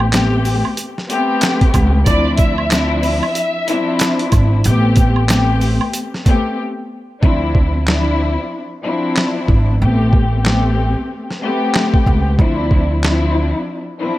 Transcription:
0.00 0.61 A1 loud
0.00 high woodblock medium
0.11 0.88 A3 loud
0.11 0.89 B3 medium
0.11 0.89 C4 medium
0.11 0.89 G4 loud
0.11 snare loud
0.11 clap medium
0.11 closed hi-hat medium
0.11 shaker medium
0.45 open hi-hat soft
0.45 shaker soft
0.65 high woodblock medium
0.77 closed hi-hat loud
0.77 shaker medium
0.98 snare soft
1.09 2.00 A3 loud
1.09 2.00 B3 loud
1.09 2.00 C4 loud
1.09 2.00 G4 loud
1.09 closed hi-hat medium
1.09 shaker soft
1.41 snare loud
1.41 clap medium
1.41 closed hi-hat loud
1.41 shaker medium
1.61 kick loud
1.61 closed hi-hat medium
1.74 2.03 C#2 loud
1.74 kick loud
1.74 closed hi-hat medium
1.74 high woodblock medium
1.74 shaker soft
2.06 3.19 D2 loud
2.06 2.67 F3 medium
2.06 2.67 C4 medium
2.06 2.67 D4 medium
2.06 2.67 E4 loud
2.06 2.35 D5 loud
2.06 kick loud
2.06 closed hi-hat loud
2.06 shaker medium
2.37 2.99 E5 medium
2.37 kick loud
2.37 closed hi-hat medium
2.37 shaker medium
2.58 high woodblock medium
2.71 3.48 F3 loud
2.71 3.48 C4 medium
2.71 3.48 D4 medium
2.71 3.48 E4 loud
2.71 snare loud
2.71 clap medium
2.71 closed hi-hat medium
2.71 shaker medium
3.03 4.16 E5 medium
3.03 open hi-hat soft
3.03 shaker soft
3.23 high woodblock medium
3.35 closed hi-hat loud
3.35 shaker medium
3.67 4.58 F3 loud
3.67 4.58 C4 loud
3.67 4.58 D4 medium
3.67 4.58 E4 loud
3.67 closed hi-hat medium
3.67 shaker soft
3.99 snare loud
3.99 clap medium
3.99 closed hi-hat loud
3.99 shaker medium
4.19 closed hi-hat medium
4.32 4.61 G#1 medium
4.32 kick loud
4.32 closed hi-hat medium
4.32 high woodblock medium
4.32 shaker soft
4.64 5.77 A1 loud
4.64 5.25 A3 loud
4.64 5.25 B3 medium
4.64 5.26 C4 medium
4.64 5.26 G4 loud
4.64 closed hi-hat loud
4.64 shaker medium
4.96 kick loud
4.96 closed hi-hat medium
4.96 shaker medium
5.16 high woodblock medium
5.28 6.05 A3 loud
5.28 6.05 B3 medium
5.28 6.05 C4 medium
5.28 6.05 G4 loud
5.28 snare loud
5.28 clap medium
5.28 closed hi-hat medium
5.28 shaker medium
5.61 open hi-hat soft
5.61 shaker soft
5.81 high woodblock medium
5.94 closed hi-hat loud
5.94 shaker medium
6.14 snare soft
6.25 6.58 A3 loud
6.25 6.58 B3 medium
6.25 6.58 C4 medium
6.25 6.58 G4 loud
6.25 kick loud
6.25 closed hi-hat medium
6.25 shaker soft
7.22 8.35 D2 loud
7.22 7.83 F3 medium
7.22 7.83 C4 medium
7.22 7.83 D4 medium
7.22 7.83 E4 loud
7.22 kick loud
7.55 kick loud
7.87 8.64 F3 medium
7.87 8.64 C4 medium
7.87 8.64 D4 medium
7.87 8.64 E4 loud
7.87 snare loud
7.87 clap medium
8.83 9.74 F3 loud
8.83 9.74 C4 loud
8.83 9.74 D4 medium
8.83 9.75 E4 loud
9.17 snare loud
9.17 clap medium
9.48 9.77 G#1 medium
9.48 kick medium
9.81 10.94 A1 loud
9.81 10.41 A3 medium
9.81 10.42 B3 medium
9.81 10.42 C4 medium
9.81 10.42 G4 loud
10.13 kick loud
10.44 11.21 A3 loud
10.44 11.21 B3 medium
10.44 11.21 C4 medium
10.44 11.21 G4 loud
10.44 snare loud
10.44 clap medium
11.31 snare soft
11.41 12.32 A3 loud
11.41 12.32 B3 medium
11.41 12.33 C4 loud
11.41 12.33 G4 loud
11.75 snare loud
11.75 clap medium
11.94 kick loud
12.06 12.35 C#2 loud
12.06 kick medium
12.38 13.51 D2 loud
12.38 12.99 F3 medium
12.38 12.99 C4 medium
12.38 12.99 D4 medium
12.38 12.99 E4 loud
12.38 kick loud
12.71 kick medium
13.04 13.80 F3 loud
13.04 13.80 C4 medium
13.04 13.80 D4 medium
13.04 13.80 E4 loud
13.04 snare loud
13.04 clap medium
13.99 14.19 F3 loud
13.99 14.19 C4 loud
13.99 14.19 D4 medium
13.99 14.19 E4 loud

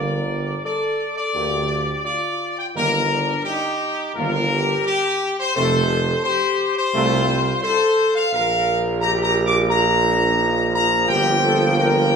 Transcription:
0.00 0.54 G1 loud
0.00 0.20 D3 medium
0.00 0.20 A#3 medium
0.00 0.65 A#4 loud
0.00 0.61 D5 loud
0.64 1.31 A4 loud
0.64 1.14 D5 loud
1.17 2.01 D5 loud
1.34 1.94 D2 loud
1.34 1.60 D3 medium
1.34 1.60 A#3 medium
1.34 2.01 G4 loud
2.05 2.71 F4 loud
2.05 2.54 D5 loud
2.59 2.67 G5 loud
2.75 3.33 G1 loud
2.75 3.00 D#3 medium
2.75 3.00 A#3 medium
2.75 3.08 D#4 loud
2.75 3.42 A#4 loud
3.11 3.44 D4 loud
3.45 4.13 D#4 loud
3.45 4.11 G4 loud
4.15 4.74 G1 loud
4.15 4.41 D#3 medium
4.15 4.41 A#3 medium
4.15 4.49 F4 loud
4.15 4.86 A#4 loud
4.52 5.39 G4 loud
4.86 5.35 G4 loud
5.40 5.54 C5 loud
5.55 6.14 F1 loud
5.55 5.80 C3 loud
5.55 5.80 A3 loud
5.55 5.88 A4 loud
5.55 6.21 C5 loud
5.91 6.23 A4 loud
6.24 6.90 G4 loud
6.24 6.73 C5 loud
6.78 7.60 C5 loud
6.93 7.52 C2 loud
6.93 7.18 C3 loud
6.93 7.18 A3 loud
6.93 7.60 F4 loud
7.62 8.29 A4 loud
7.62 8.11 C5 loud
8.15 8.32 F5 loud
8.33 11.05 A#1 loud
8.33 12.16 F3 loud
8.33 12.16 A#3 loud
8.33 8.98 A#4 loud
8.33 8.84 F5 loud
9.01 9.67 G4 loud
9.01 9.12 A#5 loud
9.23 9.34 A#5 loud
9.46 9.57 D6 loud
9.70 10.06 F4 loud
9.70 10.70 A#5 loud
10.05 10.37 D4 loud
10.39 10.74 D#4 loud
10.74 11.07 F4 loud
10.74 11.06 A#5 loud
11.09 12.16 G1 loud
11.09 11.41 G4 loud
11.09 11.74 G5 loud
11.44 11.76 A4 loud
11.79 12.16 A#4 loud
11.79 12.16 G5 loud

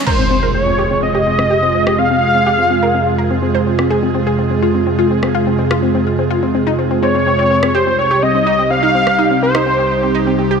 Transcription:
0.07 7.71 F2 medium
0.07 10.60 C3 medium
0.07 7.71 G#3 medium
0.07 7.71 F4 medium
0.07 7.71 G#4 medium
0.07 0.14 A#4 loud
0.07 0.51 C5 medium
0.07 crash medium
0.07 impact medium
0.19 0.26 C4 medium
0.31 0.38 C4 medium
0.43 0.50 A#4 medium
0.55 0.62 C4 medium
0.55 0.99 C#5 medium
0.67 0.74 C4 medium
0.79 0.86 G4 medium
0.91 0.98 C4 medium
1.02 1.10 C4 medium
1.02 2.00 D#5 loud
1.15 1.22 G4 medium
1.26 1.34 C4 medium
1.39 1.46 C4 medium
1.39 cross-stick medium
1.50 1.58 G4 medium
1.63 1.70 C4 medium
1.75 1.82 C4 medium
1.87 1.94 G4 medium
1.87 cross-stick medium
1.99 2.06 C4 medium
1.99 3.67 F5 loud
2.11 2.18 C4 medium
2.35 2.42 C4 medium
2.46 2.54 G4 loud
2.59 2.66 C4 medium
2.70 2.78 C4 medium
2.83 2.90 A#4 medium
2.94 3.02 C4 medium
3.07 3.14 C4 medium
3.18 3.26 A#4 medium
3.31 3.38 C4 medium
3.42 3.50 C4 medium
3.55 3.62 C5 medium
3.66 3.74 C4 medium
3.79 3.86 C4 medium
3.79 cross-stick medium
3.90 3.98 G#4 medium
4.03 4.10 C4 medium
4.14 4.22 C4 medium
4.27 4.34 G#4 medium
4.39 4.46 C4 medium
4.51 4.58 C4 medium
4.62 4.70 F4 medium
4.75 4.82 C4 medium
4.87 4.94 C4 medium
4.99 5.06 F4 medium
5.11 5.18 C4 medium
5.23 5.30 C4 medium
5.23 cross-stick medium
5.35 5.42 F4 medium
5.47 5.54 C4 medium
5.59 5.66 C4 medium
5.71 5.78 F4 medium
5.71 cross-stick medium
5.83 5.90 C4 medium
5.95 6.02 C4 medium
6.19 6.26 C4 medium
6.31 6.38 F4 medium
6.43 6.50 C4 medium
6.55 6.62 C4 medium
6.67 6.74 D#4 medium
6.79 6.86 C4 medium
6.91 6.98 C4 medium
7.03 7.10 C4 medium
7.03 7.76 C#5 loud
7.15 7.22 C4 medium
7.27 7.34 C4 medium
7.39 7.46 C4 medium
7.51 7.58 C4 medium
7.63 7.70 C4 medium
7.63 cross-stick medium
7.75 10.60 C2 medium
7.75 10.60 G3 medium
7.75 10.60 D#4 medium
7.75 10.60 G4 medium
7.75 7.82 G4 loud
7.75 8.00 C5 medium
7.87 7.94 C4 medium
7.99 8.06 C4 medium
7.99 8.24 C#5 medium
8.11 8.18 G4 medium
8.23 8.30 C4 medium
8.23 8.70 D#5 loud
8.35 8.42 C4 medium
8.47 8.54 D#4 medium
8.59 8.66 C4 medium
8.71 8.78 C4 medium
8.71 9.39 F5 loud
8.83 8.90 D#4 medium
8.95 9.02 C4 medium
9.07 9.14 C4 medium
9.07 cross-stick medium
9.19 9.26 D#4 medium
9.31 9.38 C4 medium
9.43 9.50 C4 medium
9.43 10.35 C5 medium
9.55 9.62 D#4 medium
9.55 cross-stick medium
9.67 9.74 C4 medium
9.79 9.86 C4 medium
10.03 10.10 C4 medium
10.15 10.22 D#4 medium
10.27 10.34 C4 medium
10.39 10.46 C4 medium
10.51 10.58 G4 medium

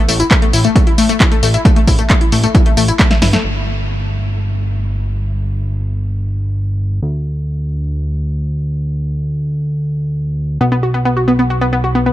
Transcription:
0.08 0.23 A1 loud
0.08 0.11 A3 loud
0.08 open hi-hat medium
0.08 tambourine medium
0.20 0.26 E4 medium
0.20 closed hi-hat medium
0.20 tambourine soft
0.31 0.35 A3 loud
0.31 kick loud
0.31 clap loud
0.31 closed hi-hat medium
0.31 tambourine soft
0.42 0.45 A3 loud
0.42 closed hi-hat medium
0.53 0.68 A1 medium
0.53 0.60 E4 medium
0.53 open hi-hat medium
0.53 tambourine medium
0.64 0.69 A3 loud
0.64 closed hi-hat medium
0.64 tambourine soft
0.76 0.78 A3 loud
0.76 kick loud
0.76 closed hi-hat medium
0.76 tambourine soft
0.87 0.93 E4 medium
0.87 closed hi-hat medium
0.98 1.13 A2 medium
0.98 1.02 A3 loud
0.98 open hi-hat loud
0.98 tambourine medium
1.09 1.12 A3 loud
1.09 closed hi-hat medium
1.09 tambourine soft
1.20 1.27 E4 medium
1.20 kick loud
1.20 clap loud
1.20 closed hi-hat medium
1.20 tambourine soft
1.32 1.36 A3 loud
1.32 closed hi-hat medium
1.43 1.57 A1 medium
1.43 1.45 A3 loud
1.43 open hi-hat medium
1.43 tambourine medium
1.54 1.61 E4 medium
1.54 closed hi-hat medium
1.54 tambourine soft
1.65 1.70 A3 loud
1.65 kick loud
1.65 closed hi-hat medium
1.65 tambourine soft
1.76 1.79 A3 loud
1.76 closed hi-hat medium
1.87 2.02 A1 loud
1.87 1.94 E4 medium
1.87 kick medium
1.87 open hi-hat loud
1.87 tambourine medium
1.99 2.03 A3 loud
1.99 closed hi-hat medium
1.99 tambourine soft
2.10 2.13 A3 loud
2.10 kick loud
2.10 clap loud
2.10 closed hi-hat medium
2.10 tambourine soft
2.21 2.28 E4 medium
2.21 closed hi-hat medium
2.32 2.47 A1 medium
2.32 2.37 A3 loud
2.32 open hi-hat medium
2.32 tambourine medium
2.44 2.46 A3 loud
2.44 closed hi-hat medium
2.44 tambourine soft
2.55 2.61 E4 medium
2.55 kick loud
2.55 closed hi-hat medium
2.55 tambourine soft
2.66 2.70 A3 loud
2.66 closed hi-hat medium
2.77 2.92 A1 medium
2.77 2.80 A3 loud
2.77 open hi-hat loud
2.77 tambourine medium
2.88 2.95 E4 medium
2.88 closed hi-hat medium
2.88 tambourine soft
2.99 3.04 A3 loud
2.99 kick loud
2.99 snare medium
2.99 clap loud
2.99 closed hi-hat medium
2.99 tambourine soft
3.11 3.13 A3 loud
3.11 snare medium
3.11 closed hi-hat medium
3.22 3.37 G1 medium
3.22 3.28 E4 medium
3.22 snare medium
3.22 open hi-hat medium
3.22 tambourine medium
3.33 3.37 A3 loud
3.33 snare medium
3.33 closed hi-hat medium
3.33 tambourine soft
3.44 7.00 G1 medium
7.02 10.58 D2 medium
10.61 12.13 B1 medium
10.61 10.65 B3 loud
10.72 10.74 B3 loud
10.83 10.90 F#4 medium
10.94 10.99 B3 medium
11.05 11.08 B3 loud
11.17 11.23 F#4 medium
11.28 11.32 B3 loud
11.39 11.42 B3 loud
11.50 11.57 F#4 medium
11.61 11.66 B3 loud
11.73 11.75 B3 loud
11.84 11.90 F#4 medium
11.95 11.99 B3 loud
12.06 12.09 B3 medium

